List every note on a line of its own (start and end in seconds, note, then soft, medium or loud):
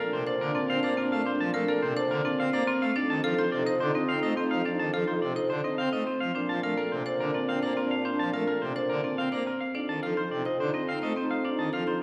0.00 2.80 A#2 medium
0.00 0.17 A4 medium
0.00 0.17 A#4 loud
0.12 0.23 C3 medium
0.12 0.36 D4 medium
0.12 0.27 C5 medium
0.27 0.45 C5 medium
0.27 0.45 D5 medium
0.41 0.51 D3 loud
0.41 0.65 D4 medium
0.41 0.59 A#4 loud
0.55 0.73 C4 medium
0.55 0.73 D5 medium
0.69 0.80 C4 medium
0.69 0.88 F5 medium
0.74 0.95 D4 medium
0.83 0.94 A#3 medium
0.83 1.01 C5 medium
0.83 1.02 D5 loud
0.97 1.16 C4 medium
0.97 1.16 A#4 medium
1.04 1.24 D4 medium
1.11 1.22 A3 medium
1.11 1.30 F5 medium
1.26 1.44 D4 medium
1.26 1.44 C5 medium
1.34 1.54 D4 medium
1.40 1.50 F3 medium
1.40 1.54 A5 medium
1.54 1.64 A3 medium
1.54 1.72 A#4 loud
1.54 1.72 F5 medium
1.63 1.83 D4 medium
1.68 1.87 A4 medium
1.68 1.87 A#4 loud
1.82 1.93 C3 medium
1.82 1.96 C5 medium
1.93 2.13 D4 medium
1.97 2.15 C5 loud
1.97 2.15 D5 medium
2.11 2.21 D3 loud
2.11 2.29 A#4 loud
2.22 2.43 C4 medium
2.22 2.43 D4 medium
2.22 2.43 D5 loud
2.39 2.50 C4 medium
2.39 2.57 F5 medium
2.52 2.63 A#3 loud
2.52 2.72 D4 soft
2.52 2.71 C5 medium
2.52 2.72 D5 loud
2.67 2.86 C4 medium
2.67 2.86 A#4 loud
2.81 2.92 A3 medium
2.81 3.00 F5 medium
2.96 6.20 F2 medium
2.96 3.14 D4 medium
2.96 3.16 D#4 soft
2.96 3.14 D5 loud
3.10 3.20 D#3 loud
3.10 3.24 A5 loud
3.24 3.34 F3 medium
3.24 3.46 D#4 medium
3.24 3.42 A4 loud
3.24 3.42 F5 medium
3.38 3.56 F4 medium
3.38 3.52 C5 loud
3.52 3.63 C3 medium
3.52 3.75 D#4 medium
3.52 3.66 D5 medium
3.66 3.85 C5 loud
3.66 3.80 D#5 medium
3.80 3.91 D3 loud
3.80 4.05 D#4 medium
3.80 3.94 C5 loud
3.95 4.13 C4 loud
3.95 4.13 D#5 medium
4.09 4.19 C4 medium
4.09 4.27 F5 medium
4.14 4.35 D#4 medium
4.23 4.33 A3 medium
4.23 4.41 C5 medium
4.23 4.36 D#5 loud
4.37 4.55 C4 medium
4.37 4.55 C5 medium
4.44 4.64 D#4 medium
4.51 4.62 F3 medium
4.51 4.69 F5 medium
4.66 4.84 D4 medium
4.66 4.84 D5 medium
4.73 4.94 D#4 medium
4.79 4.90 D#3 medium
4.79 4.93 A5 medium
4.94 5.04 F3 medium
4.94 5.12 A4 medium
4.94 5.12 F5 medium
5.02 5.23 D#4 medium
5.08 5.26 F4 medium
5.08 5.22 C5 medium
5.22 5.33 C3 medium
5.22 5.35 D5 medium
5.33 5.53 D#4 medium
5.33 5.54 C5 medium
5.33 5.49 D#5 medium
5.50 5.61 D3 medium
5.50 5.64 C5 medium
5.62 5.83 C4 medium
5.62 5.82 D#4 medium
5.62 5.83 D#5 medium
5.78 5.89 C4 medium
5.78 5.97 F5 medium
5.92 6.03 A3 medium
5.92 6.12 D#4 soft
5.92 6.11 C5 medium
5.92 6.06 D#5 medium
6.07 6.25 C4 medium
6.07 6.25 C5 medium
6.20 6.31 F3 medium
6.20 6.39 F5 medium
6.35 9.59 A#2 medium
6.35 6.56 D4 soft
6.35 6.54 D4 medium
6.35 6.53 C5 medium
6.49 6.60 F3 medium
6.49 6.63 A5 medium
6.63 6.74 A3 medium
6.63 6.85 D4 medium
6.63 6.82 A#4 medium
6.63 6.82 F5 medium
6.78 6.96 A4 medium
6.78 6.96 A#4 loud
6.92 7.02 C3 medium
6.92 7.15 D4 medium
6.92 7.06 C5 medium
7.06 7.24 C5 medium
7.06 7.24 D5 medium
7.20 7.31 D3 medium
7.20 7.44 D4 medium
7.20 7.38 A#4 medium
7.34 7.53 C4 medium
7.34 7.53 D5 medium
7.48 7.59 C4 medium
7.48 7.67 F5 medium
7.54 7.74 D4 medium
7.63 7.73 A#3 medium
7.63 7.81 C5 medium
7.63 7.81 D5 medium
7.77 7.95 C4 medium
7.77 7.95 A#4 medium
7.83 8.04 D4 medium
7.91 8.09 F5 medium
8.05 8.23 D4 medium
8.05 8.23 C5 medium
8.13 8.33 D4 medium
8.19 8.30 F3 medium
8.19 8.33 A5 medium
8.33 8.44 A3 medium
8.33 8.52 A#4 medium
8.33 8.52 F5 medium
8.42 8.63 D4 medium
8.48 8.66 A4 medium
8.48 8.66 A#4 medium
8.62 8.72 C3 medium
8.62 8.75 C5 medium
8.71 8.92 D4 medium
8.76 8.94 C5 medium
8.76 8.94 D5 medium
8.90 9.01 D3 medium
8.90 9.08 A#4 medium
9.01 9.22 C4 medium
9.01 9.22 D4 medium
9.01 9.22 D5 medium
9.18 9.29 C4 medium
9.18 9.36 F5 medium
9.30 9.43 A#3 medium
9.30 9.51 D4 soft
9.30 9.51 C5 medium
9.30 9.51 D5 medium
9.46 9.65 C4 medium
9.46 9.65 A#4 medium
9.61 9.79 F5 medium
9.75 12.03 F2 medium
9.75 9.93 D4 medium
9.75 9.95 D#4 soft
9.75 9.93 D5 medium
9.89 10.00 D#3 medium
9.89 10.02 A5 medium
10.03 10.14 F3 medium
10.03 10.25 D#4 medium
10.03 10.21 A4 medium
10.03 10.21 F5 medium
10.17 10.36 F4 medium
10.17 10.31 C5 loud
10.32 10.42 C3 medium
10.32 10.54 D#4 medium
10.32 10.46 D5 medium
10.45 10.64 C5 medium
10.45 10.60 D#5 medium
10.60 10.70 D3 medium
10.60 10.84 D#4 medium
10.60 10.74 C5 medium
10.74 10.92 C4 medium
10.74 10.92 D#5 medium
10.88 10.99 C4 medium
10.88 11.06 F5 medium
10.93 11.14 D#4 medium
11.02 11.13 A3 medium
11.02 11.20 C5 medium
11.02 11.17 D#5 medium
11.16 11.35 C4 medium
11.16 11.35 C5 medium
11.22 11.43 D#4 medium
11.31 11.49 F5 medium
11.45 11.63 D4 medium
11.45 11.63 D5 medium
11.52 11.73 D#4 medium
11.59 11.69 D#3 medium
11.59 11.73 A5 medium
11.73 11.83 F3 medium
11.73 11.91 A4 medium
11.73 11.91 F5 medium
11.81 12.02 D#4 medium
11.87 12.03 F4 medium
11.87 12.01 C5 medium